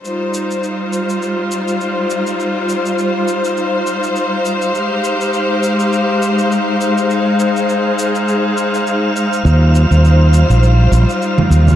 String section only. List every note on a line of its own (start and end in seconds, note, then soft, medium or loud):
0.03 4.70 G3 medium
0.03 11.76 D#4 medium
0.03 4.70 F4 medium
0.03 9.41 C5 medium
4.74 9.41 G#3 medium
4.74 7.07 G4 medium
7.09 9.43 G#4 medium
9.45 11.76 G3 medium
9.45 11.76 F4 medium
9.45 11.76 C5 medium